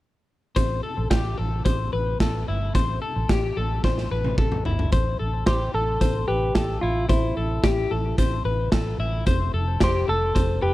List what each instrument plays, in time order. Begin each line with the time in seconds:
0.56 fingered electric bass A1, clean electric guitar C5, kick, closed hi-hat
0.83 clean electric guitar A4
0.98 fingered electric bass A1
1.10 fingered electric bass A1, clean electric guitar G4, kick, snare, closed hi-hat
1.38 fingered electric bass A1, clean electric guitar A4
1.65 fingered electric bass A1, clean electric guitar C5, kick, closed hi-hat
1.93 fingered electric bass A1, clean electric guitar B4
2.20 fingered electric bass A1, clean electric guitar A4, kick, snare, closed hi-hat
2.48 fingered electric bass G1, clean electric guitar E4
2.75 fingered electric bass A1, clean electric guitar C5, kick, closed hi-hat
3.02 clean electric guitar A4
3.16 fingered electric bass A1
3.29 fingered electric bass A1, clean electric guitar G4, kick, snare, closed hi-hat
3.57 fingered electric bass A1, clean electric guitar A4
3.84 fingered electric bass A1, clean electric guitar C5, kick, snare
3.98 snare
4.11 fingered electric bass A1, clean electric guitar B4
4.24 high tom
4.38 fingered electric bass A1, clean electric guitar A4, kick
4.52 mid tom
4.65 fingered electric bass G1, clean electric guitar E4, floor tom
4.79 floor tom
4.92 fingered electric bass A1, clean electric guitar C5, kick, closed hi-hat
5.19 fingered electric bass A1, clean electric guitar A4
5.46 fingered electric bass A1, clean electric guitar G4 C5, kick, snare, closed hi-hat
5.74 fingered electric bass A1, clean electric guitar A4
6.01 fingered electric bass A1, clean electric guitar C5, kick, closed hi-hat
6.28 fingered electric bass A1, clean electric guitar G4 B4
6.55 fingered electric bass A1, clean electric guitar A4, kick, snare, closed hi-hat
6.81 fingered electric bass A1, clean electric guitar E4 F4
7.09 fingered electric bass A1, clean electric guitar E4 C5, kick, closed hi-hat
7.37 fingered electric bass A1, clean electric guitar A4
7.64 fingered electric bass A1, clean electric guitar G4, kick, snare, closed hi-hat
7.91 fingered electric bass A1, clean electric guitar A4
8.18 fingered electric bass A1, clean electric guitar C5, kick, closed hi-hat
8.45 fingered electric bass A1, clean electric guitar B4
8.72 fingered electric bass A1, clean electric guitar A4, kick, snare, closed hi-hat
8.98 fingered electric bass A1, clean electric guitar E4
9.26 fingered electric bass F1, clean electric guitar C5, kick, closed hi-hat
9.54 fingered electric bass F1, clean electric guitar A4
9.80 fingered electric bass F1, clean electric guitar G4 C5, kick, snare, closed hi-hat
10.08 fingered electric bass F1, clean electric guitar A4
10.35 fingered electric bass F1, clean electric guitar C5, kick, closed hi-hat
10.62 fingered electric bass F1, clean electric guitar G4 B4